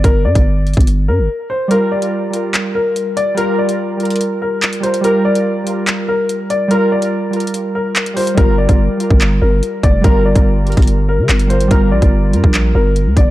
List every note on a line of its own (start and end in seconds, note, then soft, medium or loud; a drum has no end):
0.04 0.26 G1 loud
0.04 0.22 A#4 loud
0.04 kick loud
0.04 closed hi-hat medium
0.25 0.35 G2 loud
0.25 0.84 D5 medium
0.35 0.75 G1 loud
0.35 kick loud
0.35 closed hi-hat medium
0.67 closed hi-hat soft
0.74 1.10 G1 loud
0.74 kick loud
0.74 closed hi-hat medium
0.81 closed hi-hat medium
0.87 closed hi-hat medium
1.08 1.20 G2 loud
1.08 1.48 A#4 medium
1.19 1.29 G1 loud
1.50 1.67 C5 medium
1.68 1.94 G3 loud
1.68 1.96 F4 medium
1.68 1.88 A#4 loud
1.68 closed hi-hat medium
1.74 1.97 A#4 loud
1.92 2.50 D5 medium
1.99 2.26 G3 medium
1.99 2.27 F4 medium
1.99 closed hi-hat medium
2.05 2.29 A#4 medium
2.30 2.98 G3 medium
2.30 3.00 F4 medium
2.30 closed hi-hat medium
2.36 3.01 A#4 medium
2.54 clap loud
2.54 closed hi-hat medium
2.75 3.14 A#4 medium
2.96 closed hi-hat medium
3.17 3.34 D5 medium
3.17 closed hi-hat medium
3.34 3.61 G3 loud
3.34 3.62 F4 medium
3.34 3.55 A#4 loud
3.34 closed hi-hat medium
3.40 3.64 A#4 loud
3.59 4.17 D5 medium
3.66 3.92 G3 medium
3.66 3.94 F4 medium
3.66 closed hi-hat medium
3.72 3.95 A#4 medium
3.97 4.65 G3 medium
3.97 4.67 F4 medium
3.97 closed hi-hat soft
4.03 4.68 A#4 medium
4.03 closed hi-hat medium
4.10 closed hi-hat medium
4.16 closed hi-hat medium
4.21 closed hi-hat medium
4.42 4.81 A#4 medium
4.62 clap loud
4.62 closed hi-hat medium
4.73 closed hi-hat medium
4.80 4.99 G3 medium
4.80 5.00 F4 medium
4.80 5.01 C5 medium
4.80 closed hi-hat medium
4.86 5.01 A#4 medium
4.94 closed hi-hat medium
5.01 5.28 G3 loud
5.01 5.29 F4 medium
5.01 5.22 A#4 loud
5.01 closed hi-hat medium
5.07 5.31 A#4 loud
5.25 5.84 D5 medium
5.33 5.59 G3 medium
5.33 5.60 F4 medium
5.33 closed hi-hat medium
5.38 5.62 A#4 medium
5.64 6.32 G3 medium
5.64 6.33 F4 medium
5.64 closed hi-hat medium
5.70 6.35 A#4 medium
5.87 clap loud
5.87 closed hi-hat medium
6.08 6.48 A#4 medium
6.29 closed hi-hat medium
6.50 6.68 D5 medium
6.50 closed hi-hat medium
6.68 6.94 G3 loud
6.68 6.96 F4 medium
6.68 6.88 A#4 loud
6.68 closed hi-hat medium
6.74 6.97 A#4 loud
6.92 7.51 D5 medium
6.99 7.26 G3 medium
6.99 7.27 F4 medium
6.99 closed hi-hat medium
7.05 7.29 A#4 medium
7.30 7.99 G3 medium
7.30 8.00 F4 medium
7.30 closed hi-hat soft
7.36 8.02 A#4 medium
7.36 closed hi-hat medium
7.47 closed hi-hat medium
7.54 closed hi-hat medium
7.75 8.14 A#4 medium
7.96 clap loud
7.96 closed hi-hat medium
8.06 closed hi-hat medium
8.14 8.32 G3 medium
8.14 8.33 F4 medium
8.14 8.34 C5 medium
8.14 closed hi-hat soft
8.14 open hi-hat soft
8.20 8.35 A#4 medium
8.27 closed hi-hat medium
8.35 8.68 G1 loud
8.35 8.61 G3 loud
8.35 8.62 F4 medium
8.35 8.55 A#4 loud
8.35 kick loud
8.35 closed hi-hat medium
8.40 8.64 A#4 loud
8.58 9.17 D5 medium
8.66 8.89 G1 loud
8.66 8.92 G3 medium
8.66 8.94 F4 medium
8.66 kick loud
8.66 closed hi-hat medium
8.72 8.95 A#4 medium
8.97 9.65 G3 medium
8.97 9.67 F4 medium
8.97 closed hi-hat medium
9.03 9.68 A#4 medium
9.10 9.40 G1 loud
9.10 kick loud
9.21 clap loud
9.21 closed hi-hat medium
9.42 9.62 G1 loud
9.42 9.81 A#4 medium
9.63 closed hi-hat medium
9.83 10.03 F1 loud
9.83 10.01 D5 medium
9.83 kick loud
9.83 closed hi-hat medium
10.01 10.34 G1 loud
10.01 10.28 G3 loud
10.01 10.29 F4 medium
10.01 10.22 A#4 loud
10.01 kick loud
10.01 closed hi-hat medium
10.07 10.31 A#4 loud
10.25 10.84 D5 medium
10.33 10.75 G1 loud
10.33 10.59 G3 medium
10.33 10.60 F4 medium
10.33 kick loud
10.33 closed hi-hat medium
10.39 10.62 A#4 medium
10.64 11.32 G3 medium
10.64 11.33 F4 medium
10.64 closed hi-hat soft
10.70 11.35 A#4 medium
10.70 closed hi-hat medium
10.77 11.20 G1 loud
10.77 kick loud
10.77 closed hi-hat medium
10.82 closed hi-hat medium
10.87 closed hi-hat medium
11.09 11.48 A#4 medium
11.19 11.29 D3 loud
11.29 11.62 G1 loud
11.29 clap loud
11.29 closed hi-hat medium
11.39 closed hi-hat medium
11.47 11.65 G3 medium
11.47 11.67 F4 medium
11.47 11.67 C5 medium
11.47 closed hi-hat medium
11.53 11.68 A#4 medium
11.60 11.70 G#1 loud
11.60 closed hi-hat medium
11.68 11.93 G1 loud
11.68 11.94 G3 loud
11.68 11.96 F4 medium
11.68 11.88 A#4 loud
11.68 kick loud
11.68 closed hi-hat medium
11.74 11.97 A#4 loud
11.92 12.02 A#1 loud
11.92 12.50 D5 medium
11.99 12.35 G1 loud
11.99 12.26 G3 medium
11.99 12.27 F4 medium
11.99 kick loud
11.99 closed hi-hat medium
12.05 12.29 A#4 medium
12.30 12.43 G2 loud
12.30 12.98 G3 medium
12.30 13.00 F4 medium
12.30 closed hi-hat medium
12.36 13.01 A#4 medium
12.44 12.74 A#1 loud
12.44 kick loud
12.54 clap loud
12.54 closed hi-hat medium
12.75 13.08 G1 loud
12.75 13.14 A#4 medium
12.96 closed hi-hat medium
13.06 13.16 D2 loud
13.17 13.30 G1 loud
13.17 13.30 D5 medium
13.17 kick loud
13.17 closed hi-hat medium